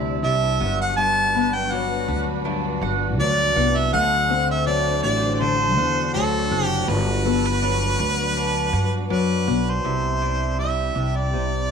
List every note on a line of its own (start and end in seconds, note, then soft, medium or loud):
0.00 0.20 D2 medium
0.00 0.58 C3 medium
0.00 0.69 C3 medium
0.00 0.23 G3 medium
0.00 0.58 C4 medium
0.00 0.24 D4 medium
0.00 1.35 D4 medium
0.00 0.58 E4 medium
0.00 0.69 E4 medium
0.00 0.69 C5 medium
0.00 0.58 D5 loud
0.00 0.69 E5 medium
0.23 0.57 C2 medium
0.23 1.72 G3 medium
0.23 1.71 D4 medium
0.23 0.77 E5 medium
0.60 2.04 G1 medium
0.60 0.97 G2 medium
0.60 3.89 F#3 medium
0.60 0.97 B3 medium
0.60 9.80 D4 medium
0.60 3.89 F#4 medium
0.60 3.89 B4 medium
0.81 0.96 F#5 medium
0.96 2.44 G2 medium
0.96 3.92 B3 medium
0.96 1.56 A5 loud
1.35 3.56 B3 medium
1.35 2.07 B4 medium
1.55 1.73 G5 loud
1.71 3.19 F#3 medium
1.71 2.45 D4 medium
1.71 2.28 F#5 medium
2.08 2.78 D2 medium
2.08 4.33 D4 medium
2.08 4.01 B4 medium
2.45 4.01 G2 medium
2.45 3.19 D4 medium
2.81 3.19 G1 loud
2.81 3.56 F#5 medium
3.19 3.53 D2 medium
3.19 4.33 F#3 medium
3.19 4.33 D4 medium
3.19 3.78 D5 loud
3.56 3.90 C2 medium
3.56 4.01 B3 medium
3.56 4.33 F#5 medium
3.77 3.93 E5 loud
3.92 5.00 D2 loud
3.92 6.85 D3 loud
3.92 5.40 D3 medium
3.92 6.88 A3 medium
3.92 9.80 F#4 medium
3.92 6.85 C5 loud
3.92 4.46 F#5 loud
4.30 6.50 C4 medium
4.30 5.02 C5 medium
4.51 4.66 E5 loud
4.67 6.14 F#3 medium
4.67 5.40 D4 medium
4.67 5.01 D5 loud
5.03 5.78 A1 loud
5.03 7.99 D4 medium
5.03 6.96 C5 medium
5.03 5.34 D5 loud
5.34 5.42 D5 medium
5.40 8.91 D3 medium
5.40 6.14 D4 medium
5.40 6.13 C5 loud
5.78 6.12 E2 loud
5.78 6.51 F#5 medium
6.14 6.49 D2 medium
6.14 7.62 F#3 medium
6.14 7.46 D4 medium
6.14 6.66 A4 medium
6.51 6.85 F#1 loud
6.51 6.97 C4 medium
6.51 8.73 F#5 medium
6.66 6.90 G4 medium
6.88 7.95 G1 loud
6.88 8.36 G2 medium
6.88 9.82 F#3 medium
6.88 8.94 B4 loud
6.88 9.82 B4 medium
7.25 9.46 B3 medium
7.25 7.44 A4 medium
7.46 7.98 B4 medium
7.62 9.09 F#3 medium
7.62 8.37 D4 medium
7.99 8.69 D2 medium
7.99 10.22 D4 medium
7.99 8.73 B4 medium
8.37 9.10 D4 medium
8.73 9.07 G2 medium
8.73 9.46 F#5 medium
9.10 9.44 F#2 loud
9.10 9.92 F#3 medium
9.10 10.21 D4 medium
9.10 9.71 B4 medium
9.47 9.82 B1 medium
9.47 9.93 B3 medium
9.47 9.93 F#5 medium
9.70 10.59 C5 loud
9.84 10.92 C2 loud
9.84 11.71 C3 medium
9.84 11.33 C3 medium
9.84 10.95 G3 medium
9.84 11.71 C4 medium
9.84 11.71 E4 medium
9.84 11.71 D5 medium
9.84 11.71 E5 medium
10.22 10.95 D4 medium
10.22 11.69 E4 medium
10.59 11.71 G3 medium
10.59 11.32 C5 medium
10.59 11.18 E5 medium
10.95 11.71 C2 medium
10.95 11.71 D4 medium
10.95 11.71 G4 medium
11.16 11.71 D5 medium
11.33 11.71 C3 medium
11.33 11.71 C5 medium